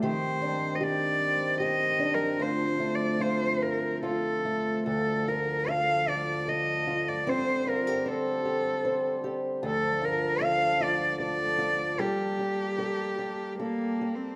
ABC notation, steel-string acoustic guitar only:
X:1
M:3/4
L:1/16
Q:1/4=75
K:Dphr
V:1 name="Steel-string acoustic guitar"
[E,G]2 D2 G4 G2 D2 | [D,,F]2 A,2 F4 F2 A,2 | D,,2 F2 A2 F2 A2 F2 | [Cc]2 F G c2 G2 c2 G2 |
D,,2 F2 A2 F2 A2 F2 | [G,A]2 G2 A2 G2 A2 G2 |]